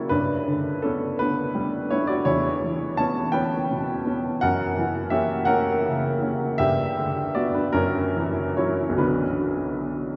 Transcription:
grand piano
Already playing: C#3 F#3 A#3 C#4 E4 F#4 G4 C#5 D5 E5
0.09 G2 D4 B4
0.47 D3
0.82 B3 C#4 D4 A4
1.19 B3 D4 B4
1.55 G3
1.90 B3 D4 E4 C#5
2.07 F#4 D5
2.25 E2 E4 C#5
2.64 E3
2.97 B3 C#4 C#5 A5
3.32 B3 C#4 B4 G5
3.71 B2
4.06 B3 C#4
4.41 F#2 A#4 F#5
4.77 E3
5.10 A#3 C#4 G4 E5
5.45 A#3 C#4 A#4 F#5
5.86 C#3
6.22 A#3 C#4
6.58 G2 G4 E5
6.97 D3
7.35 B3 F#4 D5
7.54 D4 B4
7.73 F#2 C#4 A#4
8.16 E3
8.57 F#3 C#4 E4 C#5
8.89 B1
8.96 D3 F#3 B3 D4 B4

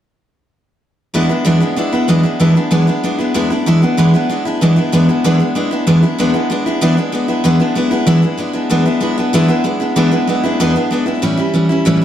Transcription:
steel-string acoustic guitar
1.14 E2 E3 G#3 B3 D4 E4
1.29 G#3 B3 D4 E4
1.45 E2 E3 G#3 B3 D4 E4
1.60 G#3 B3 D4 E4
1.76 G#3 B3 D4 E4
1.92 G#3 B3 D4 E4
2.08 E2 E3 G#3 B3 D4 E4
2.23 G#3 B3 D4 E4
2.40 E2 E3 G#3 B3 D4 E4
2.55 G#3 B3 D4 E4
2.71 E2 E3 G#3 B3 D4 E4
2.87 G#3 B3 D4 E4
3.04 G#3 B3 D4 E4
3.19 G#3 B3 D4 E4
3.34 E2 E3 G#3 B3 D4 E4
3.50 G#3 B3 D4 E4
3.66 E2 E3 G#3 B3 D4 E4
3.82 G#3 B3 D4 E4
3.97 E2 E3 G#3 B3 D4 E4
4.14 G#3 B3 D4 E4
4.29 G#3 B3 D4 E4
4.45 G#3 B3 D4 E4
4.61 E2 E3 G#3 B3 D4 E4
4.76 G#3 B3 D4 E4
4.92 E2 E3 G#3 B3 D4 E4
5.09 G#3 B3 D4 E4
5.24 E2 E3 G#3 B3 D4 E4
5.39 G#3 B3 D4 E4
5.55 G#3 B3 D4 E4
5.71 G#3 B3 D4 E4
5.87 E2 E3 G#3 B3 D4 E4
6.03 G#3 B3 D4 E4
6.18 E2 E3 G#3 B3 D4 E4
6.34 G#3 B3 D4 E4
6.50 G#3 B3 D4 E4
6.66 G#3 B3 D4 E4
6.81 E2 E3 G#3 B3 D4 E4
6.97 G#3 B3 D4 E4
7.12 G#3 B3 D4 E4
7.28 G#3 B3 D4 E4
7.44 E2 E3 G#3 B3 D4 E4
7.60 G#3 B3 D4 E4
7.75 G#3 B3 D4 E4
7.91 G#3 B3 D4 E4
8.07 E2 E3 G#3 B3 D4 E4
8.22 G#3 B3 D4 E4
8.37 G#3 B3 D4 E4
8.53 G#3 B3 D4 E4
8.70 E2 E3 G#3 B3 D4 E4
8.86 G#3 B3 D4 E4
9.01 G#3 B3 D4 E4
9.18 G#3 B3 D4 E4
9.33 E2 E3 G#3 B3 D4 E4
9.48 G#3 B3 D4 E4
9.64 G#3 B3 D4 E4
9.80 G#3 B3 D4 E4
9.96 E2 E3 G#3 B3 D4 E4
10.11 G#3 B3 D4 E4
10.27 G#3 B3 D4 E4
10.44 G#3 B3 D4 E4
10.60 E2 E3 G#3 B3 D4 E4
10.76 G#3 B3 D4 E4
10.91 G#3 B3 D4 E4
11.06 G#3 B3 D4 E4
11.22 A2 E3 G3 C#4 E4
11.37 G3 C#4 E4
11.54 E3 G3 C#4 E4
11.69 G3 C#4 E4
11.85 A2 E3 G3 C#4 E4
12.02 E4

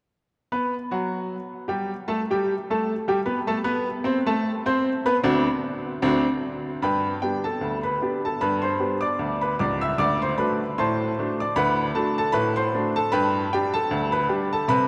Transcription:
upright piano
0.52 B3 B4 B5
0.91 F#3 F#4 F#5
1.68 G3 G4 G5
2.08 A3 A4 A5
2.31 G3 G4 G5
2.70 A3 A4 A5
3.08 G3 G4 G5
3.26 B3 B4 B5
3.47 A3 A4 A5
3.64 B3 B4 B5
4.04 C4 C5 C6
4.26 A3 A4 A5
4.66 C4 C5 C6
5.06 B3 B4 B5
5.23 D2 C4 D4 F#4
6.02 D2 C4 D4 F#4
6.82 G2 B4 G5 B5
7.22 B3 D4 G4 G5
7.44 A4 A5
7.61 D2
7.83 B4 B5
8.02 B3 D4 G4
8.25 A4 A5
8.41 G2 B4 B5
8.62 C5 C6
8.79 B3 D4 G4
9.01 D5 D6
9.19 D2
9.41 B4 B5
9.59 C#1 C#2 D5 D6
9.81 E5 E6
9.98 D2 D5 D6
10.22 C5 C6
10.38 A3 D4 F#4 B4 B5
10.78 A2 C5 A5 C6
11.19 A3 D4 F#4
11.40 D5 D6
11.56 D2 B4 F#5 B5
11.95 A3 D4 F#4 A4 A5
12.18 A4 A5
12.32 A2 B4 B5
12.56 C5 C6
12.75 A3 D4 F#4
12.96 A4 A5
13.12 G2 B4 G5 B5
13.53 G3 D4 G4 G5
13.74 A4 A5
13.91 D2
14.12 B4 B5
14.29 G3 D4 G4
14.53 A4 A5
14.68 C3 B4 B5

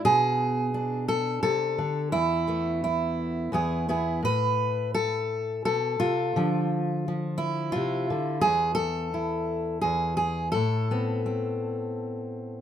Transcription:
steel-string acoustic guitar
0.05 B2 G#4
0.74 D4
1.08 A4
1.43 C3 A4
1.78 D3
2.12 E2 E4
2.48 A3 B3
2.84 E4
3.52 E2 B3 E4 G#4
3.89 B3 E4 G#4
4.23 A2 B4
4.95 A4
5.65 B2 A4
6.00 C3 F4
6.36 D3 F3
7.08 F3
7.38 E4
7.72 C3 F4
8.10 D3
8.41 E2 G#4
8.75 A4
9.14 E4
9.81 E2 G#4
10.17 G#4
10.52 A2 A4
10.91 B3 C4
11.26 C4

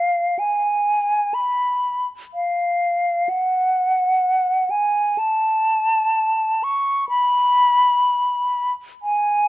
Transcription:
flute
Already playing: F5
0.39 G#5
1.34 B5
2.34 F5
3.29 F#5
4.70 G#5
5.18 A5
6.64 C#6
7.09 B5
9.03 G#5

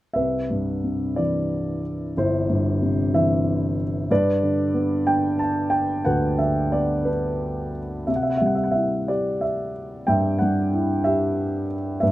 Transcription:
grand piano
0.13 C2 B4 E5
0.50 G2
0.84 C3
1.16 E3 D5
2.17 G1 E4 C5
2.50 G2
2.82 C3
3.14 E3 E5
4.11 G2 B4 D5
4.43 D3
4.74 B3
5.07 D4 G5
5.39 A5
5.70 G5
6.05 D2 B4 F#5
6.38 D3 E5
6.72 B3 D5
7.05 D4 B4
8.07 C3 E5
8.15 F#5
8.23 E5
8.30 F#5
8.37 G3 E5
8.46 F#5
8.55 E5
8.64 F#5
8.71 E5
8.76 E4
9.08 G4 D5
9.41 E5
10.07 G2 E5 G5
10.38 G3 F#5
10.73 E4
11.04 G4 E5
12.00 G2 B4 E5

